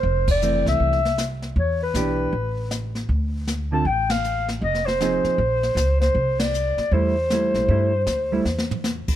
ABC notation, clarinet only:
X:1
M:4/4
L:1/8
Q:"Swing" 1/4=157
K:C
V:1 name="Clarinet"
c d2 e4 z | _d B6 z | z3 a g f2 z | _e c6 c- |
c d3 c4- | c6 z2 |]